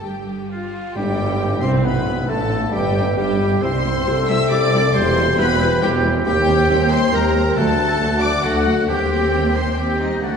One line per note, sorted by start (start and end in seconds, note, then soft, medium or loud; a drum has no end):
0.00 0.75 G1 soft
0.00 0.76 G2 soft
0.00 0.50 G4 soft
0.00 0.73 G4 medium
0.00 0.50 G5 medium
0.50 0.93 F4 medium
0.50 0.93 F5 medium
0.94 1.63 G1 medium
0.94 1.58 G1 medium
0.94 1.58 G2 medium
0.94 1.58 G3 medium
0.94 1.62 G4 medium
0.94 1.61 G4 medium
0.94 1.62 G4 medium
0.94 1.62 G5 medium
0.94 1.63 G5 medium
0.94 tam-tam medium
1.40 2.24 E4 medium
1.61 1.87 C2 medium
1.61 1.85 C2 medium
1.61 1.84 C3 medium
1.61 1.84 C4 medium
1.61 1.83 C4 medium
1.61 1.85 C5 medium
1.61 1.86 C5 medium
1.61 1.84 C5 medium
1.61 1.69 C6 medium
1.61 1.87 C6 medium
1.84 2.29 B1 medium
1.84 2.29 B2 medium
1.84 2.28 B3 medium
1.84 2.28 B4 medium
1.84 2.31 B4 medium
1.84 2.30 B4 medium
1.84 2.28 B5 medium
1.84 2.27 B5 medium
2.28 2.72 A1 medium
2.28 2.71 A2 medium
2.28 2.72 A3 medium
2.28 2.71 A3 medium
2.28 2.73 D4 medium
2.28 2.72 A4 medium
2.28 2.74 A4 medium
2.28 2.72 A4 medium
2.28 2.71 A5 medium
2.28 2.72 A5 medium
2.71 3.16 G1 medium
2.71 3.17 G1 medium
2.71 3.15 G2 medium
2.71 3.15 G3 medium
2.71 3.16 G3 medium
2.71 3.16 G4 medium
2.71 3.17 G4 medium
2.71 3.18 B4 medium
2.71 3.16 G5 medium
3.16 3.61 G1 medium
3.16 3.62 G1 medium
3.16 3.62 G2 medium
3.16 3.62 G3 medium
3.16 3.62 G4 medium
3.16 3.64 G4 medium
3.16 3.63 G4 medium
3.16 3.64 G4 medium
3.16 3.61 G5 medium
3.16 3.62 G5 medium
3.61 4.01 C2 medium
3.61 4.02 C2 medium
3.61 4.01 C3 medium
3.61 3.71 G3 medium
3.61 4.91 C4 medium
3.61 3.70 E4 medium
3.61 4.06 E4 medium
3.61 4.28 C5 loud
3.61 4.28 C5 medium
3.61 4.27 C6 loud
3.61 4.91 E6 medium
3.85 3.93 G3 medium
3.85 3.93 E4 medium
4.06 4.46 C2 medium
4.06 4.46 C3 medium
4.06 4.14 G3 medium
4.06 4.15 E4 medium
4.06 4.93 A4 medium
4.28 4.37 G3 medium
4.28 4.36 E4 medium
4.28 4.38 E5 medium
4.28 4.51 E5 medium
4.28 4.52 E5 loud
4.28 4.51 E6 loud
4.50 4.90 C2 medium
4.50 4.90 C3 medium
4.50 4.59 G3 medium
4.50 4.59 E4 medium
4.50 4.96 D5 medium
4.50 4.94 D5 loud
4.50 4.95 D5 loud
4.50 4.94 D6 loud
4.73 4.81 G3 medium
4.73 4.81 E4 medium
4.94 5.34 E1 loud
4.94 5.34 E1 medium
4.94 5.34 E2 medium
4.94 5.03 G3 medium
4.94 5.81 C4 medium
4.94 5.03 E4 medium
4.94 5.39 G4 medium
4.94 5.40 C5 loud
4.94 5.38 C5 medium
4.94 5.39 C6 loud
4.94 5.80 G6 medium
5.16 5.24 G3 medium
5.16 5.24 E4 medium
5.37 5.78 E1 medium
5.37 5.77 E2 medium
5.37 5.45 G3 medium
5.37 5.45 E4 medium
5.37 5.81 F#4 medium
5.37 5.85 B4 medium
5.37 5.83 B4 loud
5.37 5.82 B4 loud
5.37 5.81 B5 loud
5.59 5.68 G3 medium
5.59 5.67 E4 medium
5.82 6.21 E1 medium
5.82 6.21 E1 loud
5.82 6.21 E2 medium
5.82 5.90 G3 medium
5.82 6.25 C4 medium
5.82 5.90 E4 medium
5.82 6.26 E4 medium
5.82 6.04 G4 medium
5.82 6.05 G4 loud
5.82 6.05 G4 medium
5.82 5.90 G5 medium
5.82 6.25 G6 medium
6.03 6.11 G3 medium
6.03 6.11 E4 medium
6.25 6.64 D#2 loud
6.25 6.64 D#2 medium
6.25 6.64 D#2 loud
6.25 6.34 G3 medium
6.25 6.33 C4 medium
6.25 7.54 C4 medium
6.25 6.92 G4 loud
6.25 6.69 G4 medium
6.25 6.88 G4 loud
6.25 6.93 G4 medium
6.25 6.87 G5 loud
6.25 7.27 G6 medium
6.47 6.55 G3 medium
6.47 6.56 C4 medium
6.69 7.07 D#2 medium
6.69 7.08 D#2 loud
6.69 7.08 D#2 medium
6.69 6.78 G3 medium
6.69 6.78 C4 medium
6.69 7.12 D#4 medium
6.90 6.99 G3 medium
6.90 7.00 C4 medium
6.90 7.12 C5 loud
6.90 7.13 C5 loud
6.90 7.13 C5 medium
6.90 7.13 C6 loud
7.12 7.51 D#2 medium
7.12 7.52 D#2 medium
7.12 7.22 G3 medium
7.12 7.21 C4 medium
7.12 7.56 G4 medium
7.12 7.56 A#4 loud
7.12 7.58 A#4 medium
7.12 7.57 A#5 loud
7.35 7.43 G3 medium
7.35 7.43 C4 medium
7.55 7.95 D2 loud
7.55 7.96 D2 medium
7.55 8.18 D3 medium
7.55 7.66 F#3 medium
7.55 8.42 A3 medium
7.55 7.67 A3 medium
7.55 8.21 A4 medium
7.55 7.99 A4 medium
7.55 8.20 A4 loud
7.55 8.22 A4 loud
7.55 8.21 A5 loud
7.55 8.42 F#6 medium
7.80 7.88 F#3 medium
7.80 7.88 A3 medium
7.99 8.38 D2 medium
7.99 8.39 D2 medium
7.99 8.10 F#3 medium
7.99 8.09 A3 medium
7.99 8.43 F#4 medium
8.19 8.31 F#3 medium
8.19 8.31 A3 medium
8.19 8.42 D5 loud
8.19 8.31 D5 medium
8.19 8.46 D5 medium
8.19 8.44 D6 loud
8.43 8.83 D2 medium
8.43 8.84 D2 medium
8.43 8.52 F#3 medium
8.43 8.52 A3 medium
8.43 8.75 A3 medium
8.43 8.87 F#4 loud
8.43 8.91 F#4 medium
8.43 8.88 F#4 loud
8.43 8.87 A4 medium
8.43 8.88 F#5 loud
8.43 8.90 F#6 medium
8.66 8.74 F#3 medium
8.66 8.74 A3 medium
8.87 10.05 D#2 medium
8.87 10.19 D#2 medium
8.87 9.74 G3 medium
8.87 9.75 C4 medium
8.87 9.74 C4 medium
8.87 9.54 G4 medium
8.87 9.57 G4 medium
8.87 9.60 G4 medium
8.87 9.55 G4 medium
8.87 9.54 G5 loud
8.87 9.77 G6 medium
9.54 9.77 C5 medium
9.54 9.80 C5 medium
9.54 9.77 C6 loud
9.76 10.22 G3 medium
9.76 10.25 C4 medium
9.76 10.22 C4 medium
9.76 10.22 G4 medium
9.76 10.00 G4 medium
9.76 10.03 G4 medium
9.76 10.00 G5 medium
9.76 10.25 G6 medium
9.99 10.23 D#4 medium
9.99 10.25 D#4 medium
9.99 10.23 D#5 medium
10.22 10.37 D2 medium
10.22 10.30 D3 soft
10.22 10.37 A3 medium
10.22 10.37 D4 medium
10.22 10.37 F#4 medium
10.22 10.37 A4 medium
10.22 10.37 F#5 medium
10.22 10.37 A6 medium
10.31 10.37 D3 soft